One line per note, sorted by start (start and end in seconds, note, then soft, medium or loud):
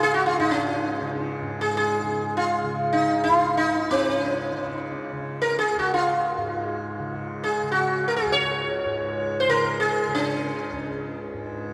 0.00 3.26 C#2 medium
0.00 0.38 G#2 medium
0.00 1.01 C#3 medium
0.00 0.14 G#4 medium
0.14 0.26 F#4 medium
0.26 0.39 F4 medium
0.39 1.42 G#2 medium
0.39 0.51 D#4 medium
0.51 1.11 C#4 medium
1.01 2.02 C#3 medium
1.42 3.90 G#2 medium
1.61 1.76 G#4 medium
1.77 2.37 G#4 medium
2.02 2.63 C#3 medium
2.37 2.92 F4 medium
2.63 4.52 C#3 medium
2.93 3.23 D#4 medium
3.24 5.76 C#2 medium
3.24 3.57 F4 medium
3.57 3.91 D#4 medium
3.90 6.37 G#2 medium
3.90 4.18 C4 medium
4.18 4.99 C#4 medium
4.52 5.13 C#3 medium
5.13 6.99 C#3 medium
5.42 5.56 A#4 medium
5.59 5.78 G#4 medium
5.76 8.24 C#2 soft
5.76 5.93 F#4 medium
5.94 7.14 F4 medium
6.37 8.85 G#2 medium
6.99 7.63 C#3 soft
7.44 7.71 G#4 medium
7.63 9.48 C#3 medium
7.72 8.05 F#4 medium
8.08 8.16 A#4 medium
8.16 8.33 G#4 medium
8.24 10.71 C#2 medium
8.32 9.11 C#5 medium
8.85 11.33 G#2 medium
9.40 9.49 C5 medium
9.48 10.08 C#3 medium
9.48 9.79 A#4 medium
9.80 10.16 G#4 medium
10.08 11.73 C#3 medium
10.15 11.05 C#4 medium
10.72 11.73 C#2 medium
11.33 11.73 G#2 medium